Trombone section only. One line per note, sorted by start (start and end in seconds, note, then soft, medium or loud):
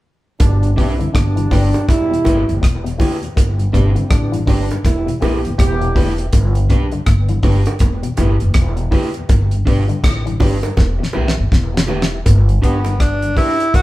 0.40 0.70 B2 loud
0.40 0.70 G3 medium
0.40 0.70 D4 loud
0.77 1.07 E3 medium
0.77 1.07 C4 medium
0.77 1.07 E4 medium
1.14 1.84 B2 medium
1.14 1.84 G3 loud
1.14 1.84 D4 loud
1.88 2.58 B2 medium
1.88 2.58 G3 loud
1.88 2.58 E4 loud
3.74 4.03 E3 medium
3.74 4.03 C4 medium
3.74 4.03 E4 medium
4.09 4.40 B2 medium
4.09 4.40 G3 medium
4.09 4.40 D4 medium
4.46 4.76 B2 medium
4.46 4.77 G3 medium
4.46 4.77 D4 medium
4.84 5.14 B2 medium
4.84 5.14 G3 medium
4.84 5.14 E4 medium
5.21 5.51 E3 medium
5.21 5.51 B3 medium
5.21 5.51 G4 medium
5.58 6.15 E3 medium
5.58 6.14 B3 medium
5.58 6.14 G4 loud